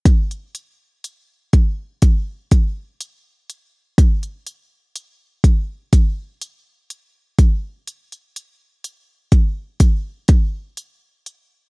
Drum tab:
HH |xxx-x-x-x-x-x-x-|xxx-x-x-x-x-x-x-|xxx-x-x-x-x-x-x-|
BD |o-----o-o-o-----|o-----o-o-----o-|------o-o-o-----|